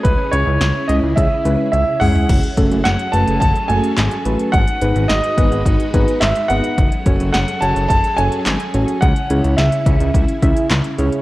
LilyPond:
<<
  \new Staff \with { instrumentName = "Grand piano" } { \time 4/4 \key fis \dorian \tempo 4 = 107 b'8 cis''4 dis''8 e''4 e''8 fis''8~ | fis''4 fis''8 a''8 a''8 gis''4. | fis''4 dis''2 e''8 fis''8~ | fis''4 fis''8 a''8 a''8 gis''4. |
fis''4 e''2~ e''8 r8 | }
  \new Staff \with { instrumentName = "Synth keys" } { \time 4/4 \key fis \dorian r8 <gis cis' e' gis'>8 r8 <gis cis' e' gis'>8 r8 <gis cis' e' b'>8 r8 <gis cis' e' gis'>8 | r8 <a cis' fis' a'>8 r8 <a cis' fis' b'>8 r8 <a cis' fis' a'>8 r8 <a cis' fis' b'>8 | r8 <b dis' gis' b'>8 r8 <b dis' gis' b'>8 r8 <b dis' gis' b'>8 r8 <b dis' gis' b'>8 | r8 <cis' fis' a' cis''>8 r8 <cis' fis' a' cis''>8 r8 <cis' fis' a' cis''>8 r8 <cis' fis' a' cis''>8 |
r8 <cis' e' gis' cis''>8 r8 <cis' e' gis' e''>8 r8 <cis' e' gis' e''>8 r8 <cis' e' gis' cis''>8 | }
  \new Staff \with { instrumentName = "String machine" } { \time 4/4 \key fis \dorian << { <cis e' gis'>1 | <fis gis' a'>1 | <gis fis' b'>1 | <fis gis' a'>1 |
<cis e'>1 | } \\ { cis'1 | cis'1 | dis'1 | cis'1~ |
cis'1 | } >> }
  \new Staff \with { instrumentName = "Analog synth bass" } { \clef bass \time 4/4 \key fis \dorian cis,16 r16 cis,16 cis,16 cis,16 r16 cis,16 cis,16 cis,16 r16 cis,16 r16 cis,16 r16 cis,16 r16 | fis,,16 r16 fis,,16 fis,,16 fis,,16 r16 fis,,16 fis,,16 fis,,16 r16 fis,,16 r16 gis,,16 r16 a,,16 r16 | gis,,16 r16 gis,,16 gis,,16 gis,,16 r16 gis,,16 gis,,16 gis,,16 r16 gis,,16 r16 gis,,16 r16 gis,,16 r16 | fis,,16 r16 fis,,16 fis,,16 fis,,16 r16 fis,,16 fis,,16 fis,,16 r16 fis,,16 r16 gis,,16 r16 a,,16 r16 |
cis,16 r16 cis,16 cis,16 cis,16 r16 cis,16 cis,16 cis,16 r16 cis,16 r16 cis,16 r16 cis,16 r16 | }
  \new DrumStaff \with { instrumentName = "Drums" } \drummode { \time 4/4 <hh bd>8 hh8 <hh sn>8 hh8 <hh bd>8 hh8 <hh tommh>8 <hho toml>16 tomfh16 | <cymc hh bd>16 hh16 <hh bd>16 hh16 <hh sn>16 hh16 hh16 hh16 <hh bd>16 hh16 hh16 hh16 <hc hh sn>16 hh16 hh16 hh16 | <hh bd>16 hh16 hh16 hh16 <hh sn>16 hh16 <hh bd>16 hh16 <hh bd>16 hh16 <hh bd>16 hh16 <hc hh sn>16 hh16 hh16 hh16 | <hh bd>16 hh16 <hh bd>16 hh16 <hh sn>16 hh16 hh16 hh16 <hh bd>16 hh16 hh16 hh16 <hc hh sn>16 hh16 hh16 hh16 |
<hh bd>16 hh16 hh16 hh16 <hh sn>16 hh16 <hh bd>16 hh16 <hh bd>16 hh16 <hh bd>16 hh16 <hc hh sn>16 hh16 hh16 hh16 | }
>>